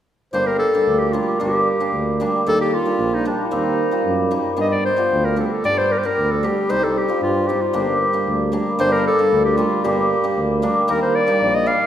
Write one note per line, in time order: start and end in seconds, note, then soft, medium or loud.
0.33 0.65 G1 medium
0.33 0.72 G3 medium
0.33 0.53 A#3 medium
0.33 0.54 D4 medium
0.33 0.48 C5 medium
0.46 0.58 A#4 medium
0.59 1.00 A4 medium
0.74 1.12 G3 medium
0.74 0.94 A#3 medium
0.74 0.94 D4 medium
0.86 1.18 D2 medium
0.99 1.15 G4 medium
1.13 1.39 G3 medium
1.13 1.27 A#3 medium
1.13 1.27 D4 medium
1.13 1.41 F4 medium
1.39 1.72 G1 medium
1.39 1.79 G3 medium
1.39 1.60 A#3 medium
1.39 1.60 D4 medium
1.39 2.19 G4 medium
1.80 2.19 G3 medium
1.80 2.00 A#3 medium
1.80 2.00 D4 medium
1.93 2.25 D2 medium
2.20 2.45 G3 medium
2.20 2.33 A#3 medium
2.20 2.34 D4 medium
2.46 2.78 D#2 medium
2.46 2.84 G3 medium
2.46 2.66 A#3 medium
2.46 2.67 D#4 medium
2.46 2.59 A4 loud
2.61 2.76 G4 medium
2.75 3.16 F4 medium
2.85 3.24 G3 medium
2.85 3.06 A#3 soft
2.85 3.06 D4 medium
2.99 3.31 A#1 medium
3.14 3.26 D#4 medium
3.25 3.50 G3 medium
3.25 3.39 A#3 medium
3.25 3.47 D4 medium
3.25 3.39 D#4 medium
3.45 3.55 F4 soft
3.51 3.84 D#2 medium
3.51 3.90 G3 medium
3.51 3.72 A#3 medium
3.51 3.72 C4 medium
3.51 4.32 D#4 medium
3.91 4.30 G3 medium
3.91 4.12 A#3 medium
3.91 4.12 F4 medium
4.05 4.37 F#2 medium
4.31 4.55 G3 medium
4.31 4.45 A#3 medium
4.31 4.45 D#4 medium
4.57 4.90 G2 medium
4.57 4.95 G3 medium
4.57 4.77 B3 medium
4.57 4.78 D4 medium
4.57 4.68 D#5 medium
4.68 4.85 D5 medium
4.68 4.73 D#5 medium
4.85 5.26 C5 medium
4.97 5.35 G3 medium
4.97 5.17 B3 medium
4.97 5.18 F4 medium
5.12 5.43 D2 medium
5.25 5.38 A#4 medium
5.36 5.63 G3 medium
5.36 5.50 B3 soft
5.36 5.51 D4 medium
5.36 5.47 A4 medium
5.46 5.53 G4 medium
5.52 5.64 A4 medium
5.64 5.96 G2 medium
5.64 6.02 G3 medium
5.64 5.84 B3 medium
5.64 5.84 D4 medium
5.64 5.80 D5 loud
5.78 5.93 C5 medium
5.92 6.00 A#4 medium
5.98 6.07 C5 medium
6.03 6.42 G3 medium
6.03 6.23 B3 medium
6.03 6.24 D4 medium
6.03 6.33 A#4 medium
6.17 6.49 D2 medium
6.31 6.46 A4 medium
6.43 6.68 G3 medium
6.43 6.56 B3 soft
6.43 6.57 D4 medium
6.43 6.72 G4 medium
6.69 7.01 C2 medium
6.69 7.07 G3 medium
6.69 6.89 C4 medium
6.69 6.89 D#4 medium
6.69 6.85 C5 medium
6.84 6.99 A4 medium
6.98 7.22 G4 medium
7.08 7.48 G3 medium
7.08 7.28 C4 medium
7.08 7.29 F4 medium
7.22 7.53 G2 medium
7.22 7.49 F4 medium
7.48 7.72 G3 medium
7.48 7.62 C4 soft
7.48 7.62 D#4 medium
7.48 7.63 G4 medium
7.62 7.77 F4 medium
7.73 8.06 G1 medium
7.73 8.12 G3 medium
7.73 7.94 A#3 medium
7.73 7.94 D4 medium
7.73 8.54 G4 medium
8.13 8.51 G3 soft
8.13 8.34 A#3 medium
8.13 8.34 D4 medium
8.27 8.58 D2 medium
8.52 8.77 G3 medium
8.52 8.66 A#3 medium
8.52 8.66 D4 medium
8.79 9.11 G1 medium
8.79 9.18 G3 medium
8.79 8.99 A#3 medium
8.79 8.99 D4 medium
8.79 8.94 C5 medium
8.92 9.06 A#4 medium
9.07 9.43 A4 medium
9.19 9.56 G3 medium
9.19 9.39 A#3 medium
9.19 9.39 D4 medium
9.32 9.63 D2 medium
9.45 9.59 G4 medium
9.57 9.83 G3 medium
9.57 9.71 A#3 medium
9.57 9.71 D4 medium
9.57 9.86 F4 medium
9.84 10.15 G1 medium
9.84 10.23 G3 medium
9.84 10.04 A#3 medium
9.84 10.04 D4 medium
9.84 10.63 G4 medium
10.24 10.61 G3 medium
10.24 10.43 A#3 medium
10.24 10.44 D4 medium
10.37 10.68 D2 medium
10.62 10.87 G3 medium
10.62 10.76 A#3 medium
10.62 10.76 D4 medium
10.88 11.20 D#2 medium
10.88 11.26 G3 medium
10.88 11.08 A#3 medium
10.88 11.08 D#4 medium
10.88 11.01 A#4 medium
11.02 11.17 C5 medium
11.16 11.56 D5 medium
11.27 11.65 G3 medium
11.27 11.47 A#3 medium
11.27 11.47 D#4 medium
11.41 11.72 A#1 medium
11.55 11.69 D#5 medium
11.66 11.87 G3 medium
11.66 11.80 A#3 medium
11.66 11.80 D#4 medium
11.66 11.87 F5 medium